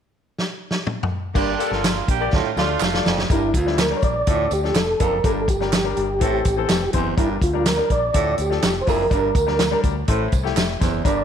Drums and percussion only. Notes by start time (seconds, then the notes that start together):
0.39 snare
0.71 snare
0.87 mid tom
1.03 floor tom
1.35 kick, crash, tambourine
1.60 closed hi-hat, tambourine
1.72 snare
1.84 snare, clap, closed hi-hat, tambourine
2.08 kick, closed hi-hat, tambourine
2.33 kick, snare
2.57 snare, tambourine
2.80 snare, clap, tambourine
2.94 snare
3.06 snare, tambourine
3.18 snare
3.30 kick, closed hi-hat, tambourine
3.54 kick, closed hi-hat, tambourine
3.67 snare
3.78 snare, clap, closed hi-hat, tambourine
4.02 kick, closed hi-hat, tambourine
4.27 kick, closed hi-hat, tambourine
4.51 closed hi-hat, tambourine
4.65 snare
4.75 snare, clap, closed hi-hat, tambourine
5.00 kick, closed hi-hat, tambourine
5.24 kick, closed hi-hat, tambourine
5.48 kick, closed hi-hat, tambourine
5.61 snare
5.72 snare, clap, closed hi-hat, tambourine
5.97 closed hi-hat, tambourine
6.21 kick, closed hi-hat, tambourine
6.45 kick, closed hi-hat, tambourine
6.69 snare, clap, closed hi-hat, tambourine
6.93 kick, closed hi-hat, tambourine
7.17 kick, closed hi-hat, tambourine
7.42 kick, closed hi-hat, tambourine
7.65 snare, clap, closed hi-hat, tambourine
7.90 kick, closed hi-hat, tambourine
8.14 kick, closed hi-hat, tambourine
8.38 closed hi-hat, tambourine
8.51 snare
8.62 snare, clap, closed hi-hat, tambourine
8.87 kick, open hi-hat, tambourine
9.11 kick, closed hi-hat, tambourine
9.35 kick, closed hi-hat, tambourine
9.48 snare
9.59 snare, clap, closed hi-hat, tambourine
9.83 kick, closed hi-hat, tambourine
10.08 kick, closed hi-hat
10.32 kick, closed hi-hat, tambourine
10.46 snare
10.57 snare, clap, closed hi-hat, tambourine
10.81 kick, snare, closed hi-hat, tambourine
11.05 kick, closed hi-hat, tambourine